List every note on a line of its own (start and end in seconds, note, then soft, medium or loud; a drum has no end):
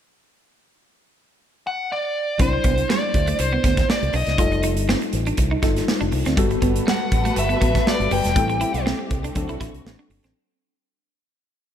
1.67 1.89 F#5 medium
1.92 2.41 D5 medium
2.38 2.57 C2 medium
2.38 4.34 F#3 medium
2.38 2.49 C4 medium
2.38 4.34 D4 soft
2.38 4.35 E4 medium
2.38 4.35 C5 medium
2.38 2.91 C5 medium
2.38 kick loud
2.38 closed hi-hat medium
2.53 muted clean electric guitar stroke soft
2.64 2.82 C2 loud
2.64 2.74 B3 medium
2.64 kick medium
2.64 closed hi-hat medium
2.78 closed hi-hat medium
2.89 2.99 G3 medium
2.89 3.37 D5 medium
2.89 snare loud
3.03 muted clean electric guitar stroke soft
3.14 3.32 D2 medium
3.14 kick medium
3.14 closed hi-hat medium
3.27 3.36 A3 medium
3.27 closed hi-hat soft
3.39 3.57 C2 medium
3.39 3.90 C5 medium
3.39 muted clean electric guitar stroke soft
3.39 closed hi-hat medium
3.53 3.60 B3 medium
3.64 3.81 D2 medium
3.64 3.73 B3 medium
3.64 kick medium
3.64 snare soft
3.64 closed hi-hat medium
3.77 kick loud
3.77 snare soft
3.77 closed hi-hat soft
3.90 4.13 D5 medium
3.90 snare loud
4.02 4.10 C2 medium
4.02 closed hi-hat soft
4.13 4.23 B1 medium
4.13 4.23 D4 medium
4.13 4.61 D#5 medium
4.13 open hi-hat medium
4.26 4.35 C2 medium
4.26 snare soft
4.26 closed hi-hat medium
4.37 4.77 F1 loud
4.37 5.60 G3 medium
4.37 5.60 D#4 medium
4.37 5.60 F4 medium
4.37 4.48 F4 medium
4.37 5.61 A4 medium
4.37 kick loud
4.37 closed hi-hat medium
4.52 muted clean electric guitar stroke soft
4.52 closed hi-hat soft
4.63 4.73 D#4 medium
4.63 closed hi-hat medium
4.77 4.94 G1 medium
4.77 closed hi-hat medium
4.89 4.98 C4 medium
4.89 snare medium
5.02 muted clean electric guitar stroke soft
5.02 closed hi-hat soft
5.13 5.30 A1 medium
5.13 closed hi-hat medium
5.26 5.35 D4 medium
5.26 closed hi-hat soft
5.37 5.55 C2 loud
5.37 muted clean electric guitar stroke soft
5.37 kick medium
5.37 closed hi-hat medium
5.51 5.59 D#4 medium
5.62 5.80 G1 medium
5.62 6.35 G3 medium
5.62 6.37 D#4 soft
5.62 5.72 D#4 medium
5.62 6.37 F4 medium
5.62 6.37 A4 medium
5.62 kick medium
5.62 snare soft
5.62 closed hi-hat medium
5.76 snare soft
5.76 closed hi-hat medium
5.88 snare medium
6.01 6.09 F1 medium
6.01 6.09 D4 medium
6.01 closed hi-hat soft
6.12 6.22 C2 medium
6.12 muted clean electric guitar stroke soft
6.12 open hi-hat medium
6.26 6.34 D2 medium
6.26 6.34 C4 medium
6.26 snare soft
6.26 closed hi-hat soft
6.36 6.55 G1 medium
6.36 7.83 G3 medium
6.36 6.47 G3 medium
6.36 8.34 G3 medium
6.36 7.83 B3 medium
6.36 8.34 F#4 medium
6.36 7.83 F#4 medium
6.36 8.34 A4 medium
6.36 7.84 A4 medium
6.36 8.34 B4 medium
6.36 kick loud
6.36 closed hi-hat medium
6.51 muted clean electric guitar stroke soft
6.51 closed hi-hat soft
6.62 6.79 G1 loud
6.62 6.71 B3 medium
6.62 kick medium
6.62 closed hi-hat medium
6.76 closed hi-hat medium
6.87 6.96 G3 medium
6.87 7.35 F#5 medium
6.87 snare loud
7.00 muted clean electric guitar stroke soft
7.12 7.29 A1 medium
7.12 kick medium
7.12 closed hi-hat medium
7.25 7.33 A3 medium
7.25 closed hi-hat soft
7.36 7.54 G1 medium
7.36 7.88 E5 medium
7.36 muted clean electric guitar stroke soft
7.36 closed hi-hat medium
7.49 7.57 B3 medium
7.49 closed hi-hat soft
7.61 7.79 A1 medium
7.61 7.70 B3 medium
7.61 kick medium
7.61 closed hi-hat medium
7.75 kick medium
7.75 snare soft
7.75 closed hi-hat medium
7.86 8.34 G3 medium
7.86 8.36 B3 soft
7.86 8.36 F#4 soft
7.86 8.36 B4 medium
7.86 8.13 D5 medium
7.86 snare loud
8.00 8.08 G1 medium
8.00 closed hi-hat soft
8.11 8.20 F#1 medium
8.11 8.21 G3 medium
8.11 8.83 G5 medium
8.11 open hi-hat medium
8.24 8.33 E1 medium
8.24 snare soft
8.24 closed hi-hat medium
8.35 8.63 A1 medium
8.35 9.33 G3 medium
8.35 8.45 A3 medium
8.35 9.35 A3 medium
8.35 9.34 C4 medium
8.35 10.34 C4 medium
8.35 9.34 E4 medium
8.35 9.35 G4 medium
8.35 9.34 A4 medium
8.35 kick loud
8.35 closed hi-hat medium
8.49 muted clean electric guitar stroke soft
8.49 closed hi-hat soft
8.61 8.70 E4 medium
8.61 closed hi-hat medium
8.74 8.92 B1 medium
8.74 closed hi-hat medium
8.86 8.95 C4 medium
8.86 snare loud
8.99 muted clean electric guitar stroke soft
9.11 9.28 C2 loud
9.11 kick medium
9.11 closed hi-hat medium
9.24 9.32 D4 medium
9.24 closed hi-hat medium
9.35 9.45 D2 loud
9.35 10.35 D3 medium
9.35 10.33 F#3 medium
9.35 10.33 C4 medium
9.35 10.34 D4 medium
9.35 10.34 F#4 medium
9.35 10.34 A4 medium
9.35 muted clean electric guitar stroke soft
9.35 kick medium
9.35 closed hi-hat medium
9.49 9.57 B1 medium
9.49 9.57 E4 medium
9.49 closed hi-hat soft
9.61 9.70 A1 medium
9.61 9.70 E4 medium
9.61 kick medium
9.61 snare soft
9.61 closed hi-hat medium
9.73 9.82 C2 medium
9.73 closed hi-hat soft
9.85 9.94 A1 medium
9.85 snare loud
9.99 10.07 D4 medium
10.09 10.19 G1 medium
10.09 muted clean electric guitar stroke soft
10.09 open hi-hat medium
10.23 10.31 A1 medium
10.23 10.32 C4 medium
10.23 snare soft
10.23 closed hi-hat medium